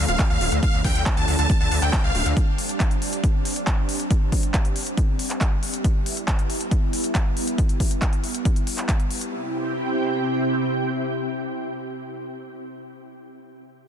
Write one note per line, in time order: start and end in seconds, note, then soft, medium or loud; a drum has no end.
0.00 2.33 F3 medium
0.00 2.33 A3 medium
0.00 5.81 D4 medium
0.08 0.16 D1 medium
0.08 0.22 F5 medium
0.08 closed hi-hat soft
0.19 kick loud
0.19 clap loud
0.19 closed hi-hat medium
0.30 0.38 D2 medium
0.30 0.51 F5 medium
0.41 0.49 D1 loud
0.41 open hi-hat medium
0.52 0.59 D2 medium
0.52 closed hi-hat soft
0.63 0.77 F5 loud
0.63 kick loud
0.63 closed hi-hat medium
0.74 0.81 D2 medium
0.84 0.92 D2 medium
0.84 1.05 G5 loud
0.84 kick medium
0.84 open hi-hat loud
0.95 1.03 D2 medium
0.95 closed hi-hat soft
1.06 kick loud
1.06 clap loud
1.06 closed hi-hat medium
1.17 1.25 D2 medium
1.17 1.31 A5 medium
1.17 closed hi-hat soft
1.28 1.36 D2 loud
1.28 open hi-hat medium
1.39 1.46 D2 medium
1.39 1.53 A5 medium
1.39 closed hi-hat soft
1.50 kick loud
1.50 closed hi-hat medium
1.61 1.68 D2 medium
1.61 1.74 A5 medium
1.71 1.79 D2 medium
1.71 open hi-hat loud
1.82 1.90 D2 medium
1.82 1.96 G5 medium
1.82 clap soft
1.82 closed hi-hat soft
1.93 kick loud
1.93 clap loud
1.93 closed hi-hat medium
2.04 2.12 C2 medium
2.04 2.25 F5 loud
2.15 2.22 D1 loud
2.15 open hi-hat medium
2.26 2.33 D2 medium
2.26 closed hi-hat soft
2.37 9.28 G3 medium
2.37 5.81 C4 medium
2.37 kick loud
2.37 closed hi-hat medium
2.58 open hi-hat loud
2.69 closed hi-hat soft
2.80 kick loud
2.80 clap loud
2.80 closed hi-hat medium
2.91 closed hi-hat soft
3.02 open hi-hat medium
3.13 closed hi-hat soft
3.24 kick loud
3.24 closed hi-hat medium
3.45 open hi-hat loud
3.56 closed hi-hat soft
3.67 kick loud
3.67 clap loud
3.67 closed hi-hat medium
3.89 open hi-hat medium
4.00 closed hi-hat soft
4.11 kick loud
4.11 closed hi-hat medium
4.32 kick medium
4.32 open hi-hat loud
4.43 closed hi-hat soft
4.54 kick loud
4.54 clap loud
4.54 closed hi-hat medium
4.65 closed hi-hat soft
4.76 open hi-hat medium
4.87 closed hi-hat medium
4.97 kick loud
4.97 closed hi-hat medium
5.19 open hi-hat medium
5.30 clap soft
5.30 closed hi-hat soft
5.41 kick loud
5.41 clap loud
5.41 closed hi-hat medium
5.63 open hi-hat medium
5.74 closed hi-hat soft
5.84 9.29 B3 medium
5.84 9.29 E4 medium
5.84 kick loud
5.84 closed hi-hat medium
6.06 open hi-hat medium
6.17 closed hi-hat soft
6.28 kick loud
6.28 clap loud
6.28 closed hi-hat medium
6.39 closed hi-hat soft
6.50 open hi-hat medium
6.61 closed hi-hat soft
6.71 kick loud
6.71 closed hi-hat medium
6.93 open hi-hat medium
7.04 closed hi-hat soft
7.15 kick loud
7.15 clap loud
7.15 closed hi-hat medium
7.37 open hi-hat medium
7.48 closed hi-hat medium
7.58 kick loud
7.58 closed hi-hat medium
7.69 closed hi-hat soft
7.80 kick medium
7.80 open hi-hat loud
7.91 closed hi-hat medium
8.02 kick loud
8.02 clap loud
8.02 closed hi-hat medium
8.13 closed hi-hat soft
8.24 open hi-hat medium
8.35 closed hi-hat medium
8.45 kick loud
8.45 closed hi-hat medium
8.56 closed hi-hat soft
8.67 open hi-hat medium
8.78 clap soft
8.78 closed hi-hat soft
8.89 kick loud
8.89 clap loud
8.89 closed hi-hat medium
9.00 closed hi-hat soft
9.11 open hi-hat medium
9.21 closed hi-hat medium
9.32 12.59 C3 medium
9.32 12.59 C4 medium
9.32 12.59 E4 medium
9.32 12.59 G4 medium
9.32 12.59 G5 medium